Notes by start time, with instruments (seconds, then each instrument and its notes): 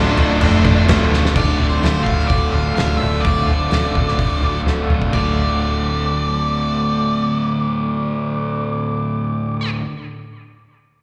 Already playing: picked electric bass D1, overdriven electric guitar D2, distorted electric guitar D2 A2 D3 A3 D4 F4, lead electric guitar D4 D5
0.17 picked electric bass D1, crash
0.41 picked electric bass F1, distorted electric guitar D2 A2 D3 A3 F4, crash
0.64 picked electric bass F1, distorted electric guitar D3 A3 F4, kick, crash
0.87 picked electric bass D1, distorted electric guitar A2 D3 A3 F4, snare, crash
1.11 distorted electric guitar D3 A3 F4, snare
1.25 snare
1.35 picked electric bass D1, distorted electric guitar D2 A2 D3, clean electric guitar D2 A2 D3 A3, lead electric guitar D5, kick, crash
1.39 clean electric guitar F4
1.57 picked electric bass D1, distorted electric guitar D2 A2 D3, clean electric guitar D3 A3 F4
1.68 lead electric guitar C5
1.81 picked electric bass D1, clean electric guitar D2 A2 D3 A3 F4, distorted electric guitar D2 A2 D3, snare, open hi-hat
2.03 picked electric bass D1, distorted electric guitar D2 A2 D3, lead electric guitar F5, kick
2.19 snare
2.26 picked electric bass D1, distorted electric guitar D2, lead electric guitar D5, kick, open hi-hat
2.31 distorted electric guitar A2 D3
2.51 picked electric bass D1, distorted electric guitar D2 A2 D3, clean electric guitar A3 F4, lead electric guitar F5
2.57 clean electric guitar D3
2.75 picked electric bass D1, distorted electric guitar D2 A2 D3, clean electric guitar A2 D3 A3, lead electric guitar F5, snare, open hi-hat
2.79 clean electric guitar F4
2.97 distorted electric guitar D2, clean electric guitar F4, lead electric guitar E5
3.02 picked electric bass D1, distorted electric guitar A2 D3, clean electric guitar D3 A3
3.21 picked electric bass D1, clean electric guitar D2 A2, lead electric guitar D5
3.25 distorted electric guitar D2 A2 D3, clean electric guitar D3 A3 F4, kick, open hi-hat
3.46 picked electric bass D1, distorted electric guitar D2 A2 D3, clean electric guitar D3 A3 F4
3.70 picked electric bass D1, clean electric guitar D2 A2 D3 A3 F4, distorted electric guitar D2 A2 D3, snare, open hi-hat
3.95 picked electric bass D1, distorted electric guitar D2 A2 D3, kick
4.08 snare
4.19 picked electric bass D1, distorted electric guitar D2 A2 D3, kick, open hi-hat
4.41 picked electric bass D1, distorted electric guitar D2 A2 D3, clean electric guitar F4
4.45 clean electric guitar D3 A3
4.65 picked electric bass D1, distorted electric guitar D2 A2 D3, clean electric guitar A2 D3 A3, snare
4.69 clean electric guitar F4
4.88 picked electric bass D1, distorted electric guitar D2 A2 D3, clean electric guitar A3 F4, mid tom
4.93 clean electric guitar D3
5.02 kick
5.10 picked electric bass D1, distorted electric guitar D2 A2 D3, clean electric guitar D2, lead electric guitar D5, kick, crash
5.15 clean electric guitar A2 D3 A3 F4